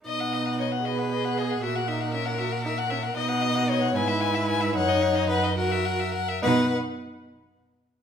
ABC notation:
X:1
M:6/8
L:1/16
Q:3/8=76
K:B
V:1 name="Violin"
d f d f d f d f d f d f | e f e f e f e f e f e f | d f d f d f g e g e g e | f d f d f d f e f e f e |
f2 z8 z2 |]
V:2 name="Violin"
d4 c2 B4 G2 | A12 | d4 c2 B6 | c4 B2 A6 |
B2 z8 z2 |]
V:3 name="Viola"
D6 G6 | F2 D2 C2 F2 D2 C2 | D6 E6 | D6 F3 z3 |
D2 z8 z2 |]
V:4 name="Cello" clef=bass
B,,12 | A,,12 | B,,6 G,,6 | F,,8- F,,2 z2 |
B,,2 z8 z2 |]